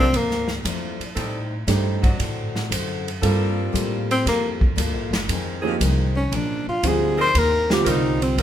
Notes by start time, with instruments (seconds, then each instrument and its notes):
Already playing: upright bass C2, upright piano A3 D4 G4 C5
0.00 tenor saxophone C4
0.13 upright bass D2, steel-string acoustic guitar A#2 F3 A3 D4, kick, ride
0.17 tenor saxophone A#3
0.31 snare
0.48 snare
0.64 upright bass F2, steel-string acoustic guitar A#2 F3 A3 D4, kick, hi-hat pedal, ride
1.00 muted upright bass stroke, ride
1.14 steel-string acoustic guitar A2 G3 C4 D#4, upright bass A2, saxophone section G3 C4 D#4 A4, kick, ride
1.67 upright bass G2, steel-string acoustic guitar A2 G3 C4 D#4, upright piano A3 D4 G4 C5, kick, snare, hi-hat pedal, ride
2.02 saxophone section F#3 C4 D4 F#4, kick, ride
2.18 upright bass A2, steel-string acoustic guitar D3 C4 F#4 A4, kick, ride
2.56 snare
2.69 upright bass F#2, steel-string acoustic guitar D3 C4 F#4 A4, kick, hi-hat pedal, ride
3.08 ride
3.21 upright bass G2, steel-string acoustic guitar G3 A#3 F4 A4, saxophone section G3 A#3 F4 A4, upright piano G3 C4 F4 A4, kick, ride
3.73 upright bass A2, steel-string acoustic guitar G3 A#3 F4 A4, kick, hi-hat pedal, ride
4.11 tenor saxophone C4, ride
4.25 upright bass F2, steel-string acoustic guitar G3 A#3 F4 A4, tenor saxophone A#3, kick, snare, ride
4.61 kick
4.76 upright bass D2, steel-string acoustic guitar G3 A#3 F4 A4, kick, hi-hat pedal, ride
4.93 upright bass A#1
5.11 upright bass G1, snare, ride
5.28 steel-string acoustic guitar F2 D#3 G#3 C4, upright bass F2, kick, ride
5.62 saxophone section F3 C4 D#4 G#4, upright piano F3 A#3 D#4 G4
5.80 upright bass C2, steel-string acoustic guitar F2 D#3 G#3 C4, kick, hi-hat pedal, ride
6.16 tenor saxophone C#4
6.31 upright bass A#1, steel-string acoustic guitar A#2 F3 G#3 D4, kick, ride
6.36 tenor saxophone D4
6.67 tenor saxophone F4, muted upright bass stroke
6.83 upright bass D2, steel-string acoustic guitar A#2 F3 G#3 D4, upright piano D3 G3 C4 F4, kick, hi-hat pedal, ride
6.88 tenor saxophone G#4
7.18 saxophone section G3 C4 D#4 A#4, tenor saxophone C5
7.34 upright bass D#2, steel-string acoustic guitar D#3 A#3 C4 G4, kick, ride
7.39 tenor saxophone A#4
7.70 upright piano D3 G3 C4 F4, tenor saxophone G4, snare
7.84 upright bass C2, steel-string acoustic guitar D#3 A#3 C4 G4, saxophone section G3 C4 D#4 A#4, kick, hi-hat pedal, ride
7.89 tenor saxophone D#4
8.22 tenor saxophone C4, ride
8.37 upright bass G1, steel-string acoustic guitar D#3 A#3, saxophone section G3 C4 D#4 A#4, kick, ride